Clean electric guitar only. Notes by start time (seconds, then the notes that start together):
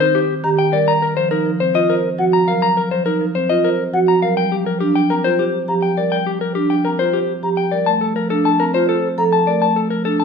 0.00 C5
0.15 G4
0.59 G5
0.73 D5
0.88 A#5
1.02 A#4
1.17 C5
1.31 A#4
1.60 C5
1.75 D#5
1.90 A#4
2.33 A#5
2.48 F5
2.62 A#5
2.77 A#4
2.91 C5
3.06 A#4
3.35 C5
3.50 D#5
3.65 A#4
4.08 A#5
4.22 F5
4.37 G5
4.52 G4
4.66 A#4
4.80 G4
4.95 G5
5.10 A#4
5.24 C5
5.39 G4
5.82 G5
5.97 D5
6.12 G5
6.27 G4
6.41 A#4
6.55 G4
6.70 G5
6.85 A#4
6.99 C5
7.13 G4
7.57 G5
7.71 D5
7.86 A5
8.01 A4
8.16 A#4
8.30 A4
8.45 A5
8.60 A#4
8.74 C5
8.89 A4
9.33 A5
9.47 D5
9.62 A5
9.76 A4
9.90 A#4
10.05 A4
10.20 A5